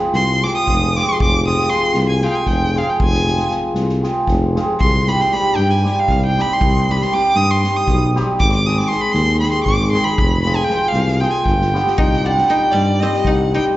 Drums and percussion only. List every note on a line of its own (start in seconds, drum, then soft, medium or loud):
0.15 snare soft
0.44 snare soft
0.68 kick medium
0.68 snare soft
0.97 snare soft
1.20 kick medium
1.48 snare soft
1.59 snare soft
1.70 snare soft
1.94 snare soft
2.21 snare soft
2.46 kick medium
2.46 snare soft
2.75 snare soft
3.00 kick medium
3.13 snare soft
3.27 snare soft
3.38 snare soft
3.51 snare soft
3.75 snare soft
3.89 snare soft
4.03 snare soft
4.27 kick medium
4.27 snare soft
4.56 snare soft
4.81 kick medium
5.07 snare soft
5.20 snare soft
5.33 snare soft
5.56 snare soft
5.85 snare soft
6.08 kick medium
6.08 snare soft
6.38 snare soft
6.61 kick medium
6.89 snare soft
7.01 snare soft
7.14 snare soft
7.36 snare soft
7.64 snare soft
7.87 kick medium
7.87 snare soft
8.16 snare soft
8.40 kick medium
8.67 snare soft
8.79 snare soft
8.91 snare soft
9.14 snare soft
9.42 snare soft
9.66 kick medium
9.66 snare soft
9.95 snare soft
10.18 kick loud
10.46 snare soft
10.57 snare soft
10.70 snare soft
10.94 snare soft
11.07 snare soft
11.22 snare soft
11.46 kick medium
11.46 snare soft
11.61 snare soft
11.75 snare soft
11.87 snare soft
11.98 kick medium
12.13 snare soft
12.38 snare soft
12.49 snare soft
12.73 snare soft
13.01 snare soft
13.13 snare soft
13.25 kick medium
13.25 snare soft
13.53 snare soft